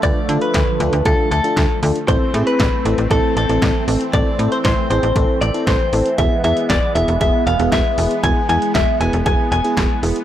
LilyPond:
<<
  \new Staff \with { instrumentName = "Clean electric guitar" } { \time 4/4 \key a \minor \tempo 4 = 117 d''8. b'4~ b'16 a'8 a'4 r8 | c''8. b'4~ b'16 a'8 a'4 r8 | d''8. c''16 c''8 c''4 d''8 c''4 | e''8 e''8 d''8 e''8 e''8 f''8 e''4 |
gis''8 gis''8 e''8 gis''8 gis''8 gis''4 r8 | }
  \new Staff \with { instrumentName = "FM electric piano" } { \time 4/4 \key a \minor <d' f' b'>16 r16 <d' f' a'>8 r8 <d' f' a'>16 r16 <d' f' a'>8 r16 <d' f' a'>8 r16 <d' f' a'>16 r16 | <c' e' a'>16 r16 <c' e' gis'>8 r8 <c' e' a'>16 r16 <c' e' a'>8 r16 <c' e' a'>8 r16 <c' e' a'>16 r16 | <c' e' a'>16 r16 <c' e' a'>8 r8 <c' e' gis'>16 r16 <c' e' a'>8 r16 <c' e' a'>8 r16 <c' e' a'>16 r16 | <b e' gis'>16 r16 <b e' gis'>8 r8 <b e' gis'>16 r16 <b e' gis'>8 r16 <b e' gis'>8 r16 <b e' gis'>16 r16 |
<b e' gis'>16 r16 <b e' gis'>8 r8 <b e' gis'>16 r16 <b e' gis'>8 r16 <b e' gis'>8 r16 <b e' gis'>16 r16 | }
  \new Staff \with { instrumentName = "Analog synth pad" } { \clef bass \time 4/4 \key a \minor << { <f a>1 | <a c'>1~ | <a c'>1 | <gis b>1~ |
<gis b>1 | } \\ { d1 | e1~ | e1~ | e1~ |
e1 | } >> }
  \new Staff \with { instrumentName = "FM bass" } { \clef bass \time 4/4 \key a \minor d,16 r16 d16 r16 d,16 r16 d,16 d,16 d,16 r16 d,16 r16 d,16 r16 d,16 r16 | a,,16 r16 a,16 r16 a,,16 r16 a,,16 a,,16 a,,16 r16 a,,16 a,,16 a,,16 r16 a,,16 r16 | a,,16 r16 a,16 r16 a,,16 r16 a,,16 a,,16 a,,16 r16 a,,16 r16 a,,16 r16 a,,16 r16 | e,,16 r16 e,16 r16 e,,16 r16 e,,16 e,,16 e,,16 r16 e,,16 e,,16 e,,16 r16 e,,16 r16 |
e,,16 r16 e,16 r16 e,,16 r16 e,,16 e,,16 e,,16 r16 e,,16 r16 e,,16 r16 e,,16 r16 | }
  \new DrumStaff \with { instrumentName = "Drums" } \drummode { \time 4/4 <hh bd>8 hh16 hh16 <hc hh bd sn>8 hh16 hh16 <hh bd>8 hh16 hh16 <hc hh bd sn>8 hho16 hh16 | <hh bd>8 hh16 hh16 <hc hh bd sn>8 hh16 hh16 <hh bd>8 hh16 hh16 <hc hh bd sn>8 hho16 hh16 | <hh bd>8 hh16 hh16 <hc hh bd sn>8 hh16 hh16 <hh bd>8 hh16 hh16 <hc hh bd sn>8 hho16 hh16 | <hh bd>8 hh16 hh16 <hc hh bd sn>8 hh16 hh16 <hh bd>8 hh16 hh16 <hc hh bd sn>8 hho16 hh16 |
<hh bd>8 hh16 hh16 <hc hh bd sn>8 hh16 hh16 <hh bd>8 hh16 hh16 <hc hh bd sn>8 hho16 hh16 | }
>>